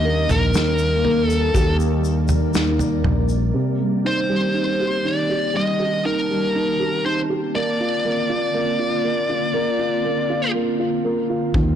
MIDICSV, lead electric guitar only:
0, 0, Header, 1, 2, 480
1, 0, Start_track
1, 0, Key_signature, -2, "major"
1, 0, Tempo, 1000000
1, 1701, Time_signature, 4, 2, 24, 8
1, 5642, End_track
2, 0, Start_track
2, 0, Title_t, "Lead electric guitar"
2, 0, Program_c, 0, 29
2, 0, Note_on_c, 0, 75, 96
2, 148, Note_on_c, 0, 70, 68
2, 155, Note_off_c, 0, 75, 0
2, 599, Note_off_c, 0, 70, 0
2, 599, Note_on_c, 0, 69, 68
2, 845, Note_off_c, 0, 69, 0
2, 1953, Note_on_c, 0, 72, 74
2, 2433, Note_on_c, 0, 74, 76
2, 2441, Note_off_c, 0, 72, 0
2, 2670, Note_off_c, 0, 74, 0
2, 2671, Note_on_c, 0, 75, 95
2, 2890, Note_off_c, 0, 75, 0
2, 2908, Note_on_c, 0, 70, 60
2, 3386, Note_off_c, 0, 70, 0
2, 3388, Note_on_c, 0, 72, 62
2, 3451, Note_off_c, 0, 72, 0
2, 3626, Note_on_c, 0, 74, 76
2, 5044, Note_off_c, 0, 74, 0
2, 5642, End_track
0, 0, End_of_file